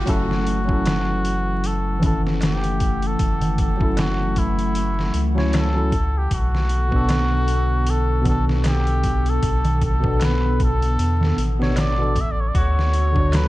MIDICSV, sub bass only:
0, 0, Header, 1, 2, 480
1, 0, Start_track
1, 0, Key_signature, 3, "minor"
1, 0, Tempo, 779221
1, 47, Time_signature, 4, 2, 24, 8
1, 8304, End_track
2, 0, Start_track
2, 0, Title_t, "Sub bass"
2, 0, Program_c, 0, 38
2, 48, Note_on_c, 0, 30, 99
2, 1948, Note_off_c, 0, 30, 0
2, 1968, Note_on_c, 0, 30, 104
2, 3148, Note_off_c, 0, 30, 0
2, 3165, Note_on_c, 0, 37, 84
2, 3866, Note_off_c, 0, 37, 0
2, 3888, Note_on_c, 0, 35, 103
2, 5788, Note_off_c, 0, 35, 0
2, 5807, Note_on_c, 0, 35, 99
2, 6762, Note_off_c, 0, 35, 0
2, 6766, Note_on_c, 0, 40, 100
2, 6982, Note_off_c, 0, 40, 0
2, 7007, Note_on_c, 0, 33, 93
2, 7707, Note_off_c, 0, 33, 0
2, 7728, Note_on_c, 0, 38, 105
2, 8304, Note_off_c, 0, 38, 0
2, 8304, End_track
0, 0, End_of_file